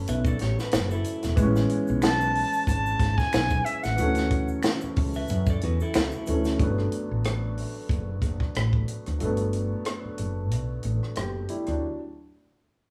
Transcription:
Already playing: F#3 A3 B3 C#4
0.07 B1 B4 E5, closed hi-hat, shaker
0.25 A4 D5, kick, shaker
0.39 A1 G4 C#5, snare, closed hi-hat
0.59 F#4 B4, snare, shaker
0.71 F#1, finger snap, snare, closed hi-hat, shaker
0.91 E4 A4, shaker
1.04 closed hi-hat, shaker
1.23 E1, snare, closed hi-hat, shaker
1.36 A1 E3 G#3 B3, kick, closed hi-hat, shaker
1.42 C#4
1.56 snare, shaker
1.70 closed hi-hat
1.87 B1, shaker
2.02 A5, finger snap, snare, closed hi-hat, shaker
2.21 shaker
2.35 open hi-hat
2.53 shaker
2.67 G#1 A5, kick, closed hi-hat, shaker
2.86 shaker
3.00 G#1, kick, snare, closed hi-hat
3.18 G#5, kick, snare, shaker
3.32 B1, finger snap, snare, closed hi-hat, shaker
3.50 kick, shaker
3.65 E5, closed hi-hat, shaker
3.83 A1 F#5, snare, closed hi-hat, shaker
3.96 D2 E3 F#3, closed hi-hat, shaker
4.01 A3 C#4
4.15 snare, closed hi-hat, shaker
4.31 kick, closed hi-hat
4.48 shaker
4.63 finger snap, snare, closed hi-hat, shaker
4.81 muted fretless electric bass stroke, shaker
4.96 C#2, kick, open hi-hat
5.14 B4 E5, shaker
5.28 F#2, closed hi-hat, shaker
5.46 D5, kick, shaker
5.51 A4
5.61 E2 F#4 B4, closed hi-hat
5.80 E4 A4, shaker
5.94 C#2, finger snap, snare, closed hi-hat, shaker
6.11 shaker
6.26 D2 E3 F#3 A3 C#4, closed hi-hat, shaker
6.44 snare, closed hi-hat, shaker
6.58 G1 D3 F#3, kick, closed hi-hat
6.62 A3 B3
6.78 cross-stick
6.92 closed hi-hat
7.11 A1
7.24 cross-stick, closed hi-hat
7.58 open hi-hat
7.89 F#1, kick, closed hi-hat
8.22 F#1, kick, cross-stick, closed hi-hat
8.40 kick, cross-stick
8.55 A1, cross-stick, closed hi-hat
8.73 kick
8.88 closed hi-hat
9.06 D2, cross-stick, closed hi-hat
9.19 G1 D3 F#3 A3, closed hi-hat
9.25 B3
9.37 closed hi-hat
9.53 closed hi-hat
9.85 cross-stick, closed hi-hat
10.05 muted fretless electric bass stroke
10.18 F#1, closed hi-hat
10.51 B1, closed hi-hat
10.83 A1, closed hi-hat
11.03 cross-stick
11.15 F#1 B3 G4, cross-stick, closed hi-hat
11.49 G3 E4, closed hi-hat
11.66 D2 F#3 D4, cross-stick, closed hi-hat

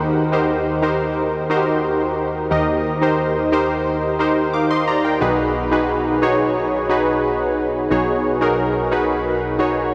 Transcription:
Already playing: D#2 D#3 D#4 G4 A#4 C5
0.32 D#4 G4 A#4 C5
0.82 D#4 G4 A#4 C5
1.50 D#4 F#4 A#4 C5
1.57 G4
2.51 D#2 D#3 D#4 G4 A#4 D#5
3.01 D#4 G4 A#4 C5
3.52 D#4 G4 A#4 C5
4.19 D#4 G4 A#4 C5
4.53 F5 D6
4.71 D#5 C6
4.87 D5 A#5
5.04 A#4 G5
5.21 B1 B2 D#4 F#4 G#4 B4
5.71 D#4 F#4 G#4 B4
6.22 D#4 F#4 G#4 C#5
6.89 D#4 F#4 G#4 B4
7.90 B1 B2 D#4 F#4 G#4 C#5
8.41 D#4 F#4 G#4 A#4
8.91 D#4 F#4 G#4 B4
9.59 D#4 F#4 G#4 C#5

